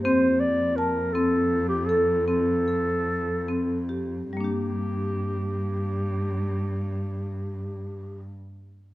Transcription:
<<
  \new Staff \with { instrumentName = "Clarinet" } { \time 11/8 \key g \minor \tempo 4 = 72 c''8 d''8 bes'8 a'8. g'16 a'8 a'2 r8 | g'1~ g'4. | }
  \new Staff \with { instrumentName = "Marimba" } { \time 11/8 \key g \minor c'4 a''8 c'4 a'8 c'8 a'4 c'8 g'8 | <g bes d' g'>1~ <g bes d' g'>4. | }
  \new Staff \with { instrumentName = "Cello" } { \clef bass \time 11/8 \key g \minor f,1~ f,4. | g,1~ g,4. | }
>>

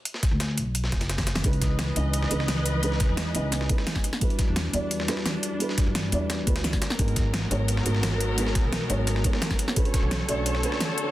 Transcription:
<<
  \new Staff \with { instrumentName = "String section" } { \time 4/4 \key cis \dorian \tempo 4 = 173 r1 | <e b' dis''>1~ | <e b' dis''>2.~ <e b' dis''>8 d'8~ | d'1~ |
d'2.~ d'8 <fis b ais'>8~ | <fis b ais'>1~ | <fis b ais'>1 | <d a' cis''>1 | }
  \new Staff \with { instrumentName = "Felt piano" } { \time 4/4 \key cis \dorian r1 | <gis cis' dis' e' b'>4. <gis cis' dis' e' dis''>8 r8 <gis cis' dis' e' b'>8 r4 | <gis cis' dis' e' b'>4. <gis cis' dis' e' dis''>8 r8 <gis cis' dis' e' b'>8 r4 | <g d' e' fis' b'>4. <g d' e' fis' d''>8 r8 <g d' e' fis' b'>8 r4 |
<g d' e' fis' b'>4. <g d' e' fis' d''>8 r8 <g d' e' fis' b'>8 r4 | <gis b dis' fis' ais'>4. <gis b dis' fis' cis''>8 r8 <gis b dis' fis' ais'>8 r4 | <gis b dis' fis' ais'>4. <gis b dis' fis' cis''>8 r8 <gis b dis' fis' ais'>8 r4 | <a cis' d' fis' b'>4. <a cis' d' fis' d''>8 r8 <a cis' d' fis' b'>8 r4 | }
  \new Staff \with { instrumentName = "Upright bass" } { \clef bass \time 4/4 \key cis \dorian r8. d,8. b,,4 fis,,4. | cis,4. cis,4 cis,4.~ | cis,8. e,8. cis,4 r4. | r8. e,8. e,4 r4. |
r8. g,8. e,4 d,4 r8 | gis,,4. gis,,4 gis,,4.~ | gis,,8. b,,8. gis,,4 r4. | r8. b,,8. b,,4 r4. | }
  \new DrumStaff \with { instrumentName = "Drums" } \drummode { \time 4/4 hh16 sn16 <hh bd sn>8 <hh sn>8 hh8 hh16 sn16 <hh bd sn>16 <hh sn>16 <hh sn>16 <hh bd sn>16 <hh sn>16 <hh sn>16 | <hh bd>16 hh16 <hh bd sn>8 <hh sn>8 hh8 hh16 sn16 hh16 sn16 <hh sn>8 hh8 | hh16 sn16 <hh bd sn>8 <hh sn>8 hh8 <hh sn>16 sn16 <hh bd>16 sn16 <hh sn>16 <bd sn>16 hh16 sn16 | <hh bd>16 hh16 <hh bd sn>8 <hh sn>8 hh8 hh16 sn16 <hh sn>16 sn16 <hh sn>8 hh8 |
hh16 sn16 <hh bd sn>8 <hh sn>8 hh8 <hh sn>8 <hh bd>16 <hh sn>16 <hh sn>16 <hh bd sn>16 <hh sn>16 sn16 | <hh bd>16 hh16 <hh bd sn>8 <hh sn>8 hh8 hh16 sn16 hh16 sn16 <hh sn>8 hh8 | hh16 sn16 <hh bd sn>8 <hh sn>8 hh8 <hh sn>16 sn16 <hh bd>16 sn16 <hh sn>16 <bd sn>16 hh16 sn16 | <hh bd>16 hh16 <hh bd sn>8 <hh sn>8 hh8 hh16 sn16 hh16 sn16 <hh sn>8 hh8 | }
>>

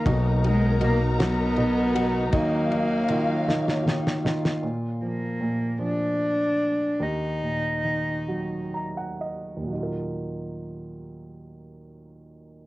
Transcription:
<<
  \new Staff \with { instrumentName = "String section" } { \time 6/8 \key ees \minor \tempo 4. = 51 << { <ais' ais''>2. | <ges f''>2. | r2. | r2. |
r2. | } \\ { dis'2.~ | dis'2. | r2. | r2. |
r2. | } >> }
  \new Staff \with { instrumentName = "Steel-string acoustic guitar" } { \time 6/8 \key ees \minor fis8 dis'8 fis'4 dis'8 fis'8 | ges8 ees'8 f'8 bes8 ees'8 f'8 | r2. | r2. |
r2. | }
  \new Staff \with { instrumentName = "Cello" } { \time 6/8 \key ees \minor r8 aes8 ais8 b4. | bes2 r4 | r8 bes4 d'4. | ees'2 r4 |
r2. | }
  \new Staff \with { instrumentName = "Grand piano" } { \time 6/8 \key ees \minor r2. | r2. | r2. | r2 bes''16 ges''16 ees''8 |
r2. | }
  \new Staff \with { instrumentName = "Grand piano" } { \clef bass \time 6/8 \key ees \minor b,8 fis8 b,8 fis8 b,8 fis8 | ees8 ees8 ees8 ees8 ees8 ees8 | bes,8 f8 bes,8 f4. | ees,8 bes,8 ees8 ges4. |
<ees, bes, ges ees' f' bes'>2. | }
  \new Staff \with { instrumentName = "Upright bass" } { \clef bass \time 6/8 \key ees \minor b,,2. | ees,2. | r2. | r2. |
r2. | }
  \new DrumStaff \with { instrumentName = "Drums" } \drummode { \time 6/8 <bd cymr>8 cymr8 cymr8 <cymr sn>8 cymr8 cymr8 | <bd cymr>8 cymr8 cymr8 sn16 sn16 sn16 sn16 sn16 sn16 | r4. r4. | r4. r4. |
r4. r4. | }
>>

